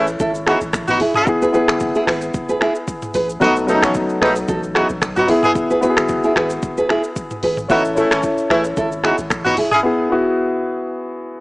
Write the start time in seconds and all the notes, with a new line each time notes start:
Already playing: A1 C#4 E4 A4
0.07 shaker
0.20 G#1 E4 A4, kick, shaker
0.35 shaker
0.47 B3 D#4 E4 F#4 G#4, finger snap, cross-stick
0.61 G#1, shaker
0.73 A1, finger snap, kick, cross-stick, shaker
0.88 B3 D#4 F#4, mid tom, shaker
1.00 E1 E4 G#4, open hi-hat
1.14 C#4 E4 G#4, mid tom, shaker
1.26 E1 B3 E4 G#4, kick, shaker
1.42 G#4 B4, shaker
1.53 B3 E4 G#4 B4, shaker
1.68 F#1, finger snap, cross-stick, shaker
1.80 kick, shaker
1.95 E4 G#4, shaker
2.07 G#1 G#4 B4, finger snap, cross-stick, open hi-hat
2.21 shaker
2.34 E1, kick, shaker
2.49 G#4 B4, shaker
2.61 E4 G#4, finger snap, cross-stick
2.75 shaker
2.88 kick, shaker
3.02 mid tom, shaker
3.14 A1 G#4 B4, open hi-hat, shaker
3.29 shaker
3.40 B1 F#3 A3 B3 D#4 F#4 A4 B4 D#5, kick, shaker
3.56 shaker
3.67 F#3 A3 B3 C#4 D#4 A4 C#5, shaker
3.75 D#4
3.83 A1 F#3 A3 C#4, finger snap, cross-stick, shaker
3.94 kick, shaker
4.09 shaker
4.21 B1 A3 B3 D#4 G#4 B4, finger snap, cross-stick
4.36 shaker
4.48 A1 F#4 A4, kick, shaker
4.63 shaker
4.75 B3 D#4 E4 F#4 G#4, finger snap, cross-stick
4.89 A1, shaker
5.02 B1, finger snap, kick, cross-stick, shaker
5.16 B3 D#4 F#4, mid tom, shaker
5.27 E1 B3 E4 G#4, open hi-hat
5.43 B3 E4 G#4, mid tom, shaker
5.55 E1, kick, shaker
5.70 G#4 B4, shaker
5.81 B3 E4 F#4 G#4 B4, shaker
5.90 G#4
5.97 F#1, finger snap, cross-stick, shaker
6.08 kick, shaker
6.23 E4 G#4, shaker
6.36 G#1 G#4 B4, finger snap, cross-stick
6.50 shaker
6.63 E1, kick, shaker
6.77 G#4 B4, shaker
6.89 E4 G#4, finger snap, cross-stick
7.04 shaker
7.16 kick, shaker
7.31 mid tom, shaker
7.43 G#1 G#4 B4, open hi-hat
7.57 mid tom, shaker
7.68 A1 B3 C#4 D#4 E4 F#4 A4 C#5 E5, kick, shaker
7.85 shaker
7.95 A3 C#4 E4 A4 C#5, shaker
8.11 G#1 E3 A3 C#4, finger snap, cross-stick, shaker
8.23 kick, shaker
8.38 shaker
8.50 A1 A3 C#4 E4 G#4 B4, finger snap, cross-stick
8.64 shaker
8.77 G#1 E4 A4, kick, shaker
8.92 shaker
9.04 B3 D#4 E4 F#4 G#4, finger snap, cross-stick
9.18 G#1, shaker
9.30 A1, finger snap, kick, cross-stick, shaker
9.45 B3 D#4 F#4, mid tom, shaker
9.57 E1 E4 G#4, open hi-hat
9.71 C#4 E4 G#4, mid tom, shaker
9.83 B3 E4 G#4
10.10 B3 E4 F#4